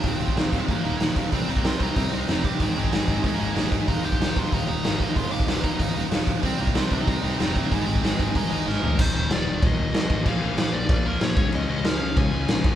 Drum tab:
CC |----------------|----------------|----------------|----------------|
HH |o-o-o-o-o-o-o-o-|o-o-o-o-o-o-o-o-|o-o-o-o-o-o-o-o-|o-o-o-o-o-o-o-o-|
SD |----o-------o---|----o-------o---|----o-------o---|----o-------o---|
FT |----------------|----------------|----------------|----------------|
BD |o--o--o-o-----o-|o--o--o-o-----o-|o--o--o-o-----o-|o--o--o-o-----o-|

CC |----------------|----------------|----------------|x---x---x---x---|
HH |o-o-o-o-o-o-o-o-|o-o-o-o-o-o-o-o-|o-o-o-o-o-o-----|----------------|
SD |----o-------o---|----o-------o---|----o-------o---|----o-------o---|
FT |----------------|----------------|--------------o-|----------------|
BD |o--o--o-o-----o-|o--o--o-o-----o-|o--o--o-o-------|o-------o-----o-|

CC |x---x---x---x---|x---x---x---x---|
HH |----------------|----------------|
SD |----o-------o---|----o-------o---|
FT |----------------|----------------|
BD |o-------o-----o-|--------o-----o-|